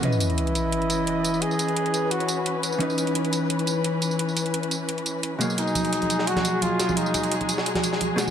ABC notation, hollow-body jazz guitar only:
X:1
M:4/4
L:1/8
Q:"Swing 16ths" 1/4=173
K:C#m
V:1 name="Hollow-body jazz guitar"
[E,CBd]8- | [E,CBd]8 | [E,CDB]8- | [E,CDB]6- [E,CDB] [B,,F,G,^A,]- |
[B,,F,G,^A,]8- | [B,,F,G,^A,]6- [B,,F,G,A,] [^A,,B,,G,F] |]